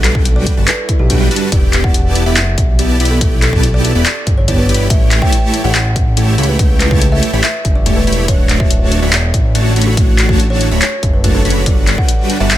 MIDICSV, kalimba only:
0, 0, Header, 1, 2, 480
1, 0, Start_track
1, 0, Tempo, 422535
1, 1729, Time_signature, 4, 2, 24, 8
1, 14290, End_track
2, 0, Start_track
2, 0, Title_t, "Kalimba"
2, 0, Program_c, 0, 108
2, 50, Note_on_c, 0, 69, 95
2, 230, Note_off_c, 0, 69, 0
2, 410, Note_on_c, 0, 74, 96
2, 590, Note_off_c, 0, 74, 0
2, 769, Note_on_c, 0, 71, 94
2, 950, Note_off_c, 0, 71, 0
2, 1129, Note_on_c, 0, 67, 90
2, 1249, Note_off_c, 0, 67, 0
2, 1369, Note_on_c, 0, 67, 93
2, 1550, Note_off_c, 0, 67, 0
2, 1729, Note_on_c, 0, 74, 101
2, 1910, Note_off_c, 0, 74, 0
2, 2091, Note_on_c, 0, 78, 91
2, 2210, Note_off_c, 0, 78, 0
2, 2570, Note_on_c, 0, 76, 95
2, 2811, Note_off_c, 0, 76, 0
2, 3531, Note_on_c, 0, 69, 95
2, 3711, Note_off_c, 0, 69, 0
2, 3889, Note_on_c, 0, 69, 96
2, 4070, Note_off_c, 0, 69, 0
2, 4250, Note_on_c, 0, 74, 97
2, 4430, Note_off_c, 0, 74, 0
2, 4611, Note_on_c, 0, 74, 97
2, 4791, Note_off_c, 0, 74, 0
2, 4971, Note_on_c, 0, 73, 89
2, 5090, Note_off_c, 0, 73, 0
2, 5210, Note_on_c, 0, 71, 96
2, 5390, Note_off_c, 0, 71, 0
2, 5569, Note_on_c, 0, 76, 99
2, 5750, Note_off_c, 0, 76, 0
2, 5929, Note_on_c, 0, 79, 93
2, 6049, Note_off_c, 0, 79, 0
2, 6409, Note_on_c, 0, 78, 96
2, 6650, Note_off_c, 0, 78, 0
2, 7370, Note_on_c, 0, 71, 97
2, 7550, Note_off_c, 0, 71, 0
2, 7729, Note_on_c, 0, 71, 97
2, 7910, Note_off_c, 0, 71, 0
2, 8090, Note_on_c, 0, 76, 95
2, 8270, Note_off_c, 0, 76, 0
2, 8450, Note_on_c, 0, 76, 97
2, 8631, Note_off_c, 0, 76, 0
2, 8810, Note_on_c, 0, 74, 89
2, 8929, Note_off_c, 0, 74, 0
2, 9050, Note_on_c, 0, 71, 93
2, 9230, Note_off_c, 0, 71, 0
2, 9410, Note_on_c, 0, 73, 98
2, 9590, Note_off_c, 0, 73, 0
2, 9770, Note_on_c, 0, 76, 91
2, 9889, Note_off_c, 0, 76, 0
2, 10249, Note_on_c, 0, 74, 96
2, 10490, Note_off_c, 0, 74, 0
2, 11211, Note_on_c, 0, 66, 101
2, 11390, Note_off_c, 0, 66, 0
2, 11570, Note_on_c, 0, 66, 97
2, 11751, Note_off_c, 0, 66, 0
2, 11931, Note_on_c, 0, 73, 95
2, 12111, Note_off_c, 0, 73, 0
2, 12288, Note_on_c, 0, 73, 98
2, 12470, Note_off_c, 0, 73, 0
2, 12650, Note_on_c, 0, 71, 90
2, 12769, Note_off_c, 0, 71, 0
2, 12889, Note_on_c, 0, 69, 97
2, 13069, Note_off_c, 0, 69, 0
2, 13248, Note_on_c, 0, 74, 102
2, 13429, Note_off_c, 0, 74, 0
2, 13609, Note_on_c, 0, 78, 92
2, 13729, Note_off_c, 0, 78, 0
2, 14090, Note_on_c, 0, 76, 98
2, 14290, Note_off_c, 0, 76, 0
2, 14290, End_track
0, 0, End_of_file